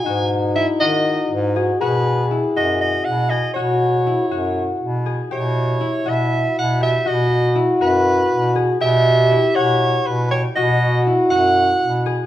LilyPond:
<<
  \new Staff \with { instrumentName = "Soprano saxophone" } { \time 7/8 \key b \major \tempo 4 = 120 gis''8 r8 e''8 dis''4 r4 | b'4 r8 dis''8 dis''8 fis''8 dis''8 | cis''2~ cis''8 r4 | cis''4. e''4 fis''8 e''8 |
dis''4 r8 b'4. r8 | e''4. cis''4 b'8 cis''8 | dis''4 r8 fis''4. r8 | }
  \new Staff \with { instrumentName = "French horn" } { \time 7/8 \key b \major dis'2. fis'8 | gis'2. r8 | fis'4. fis'4. r8 | e'2.~ e'8 |
fis'2.~ fis'8 | g'2. r8 | fis'2. r8 | }
  \new Staff \with { instrumentName = "Harp" } { \time 7/8 \key b \major fis'4 e'8 fis'4 r8 gis'8 | fis'4 e'8 fis'4 r8 gis'8 | fis'4 e'8 fis'4 r8 gis'8 | g'4 e'8 fis'4 r8 g'8 |
fis'4 e'8 fis'4 r8 gis'8 | g'4 e'8 fis''4 r8 g'8 | fis'4 e'8 fis'4 r8 gis'8 | }
  \new Staff \with { instrumentName = "Bass clarinet" } { \clef bass \time 7/8 \key b \major gis,4. dis4 gis,4 | b,4. fis,4 b,4 | b,4. fis,4 b,4 | b,4. b,4 b,4 |
b,4. fis,4 b,4 | b,4. b,4 b,4 | b,4. fis,4 b,4 | }
>>